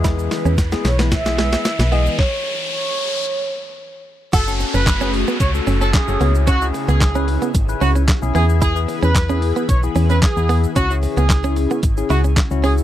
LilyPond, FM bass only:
\new Staff \with { instrumentName = "FM bass" } { \clef bass \time 4/4 \key cis \minor \tempo 4 = 112 e,8. e,8. b,,4.~ b,,16 b,,8. | r1 | fis,,8. fis,,4~ fis,,16 cis,8 fis,,8. fis,,16 cis,8~ | cis,8. cis,4~ cis,16 gis,,8 cis,8. b,,16 e,8~ |
e,8. e,4~ e,16 b,,8 e,8. e,8. | cis,8. cis,4~ cis,16 gis,,8 cis,8. cis,8. | }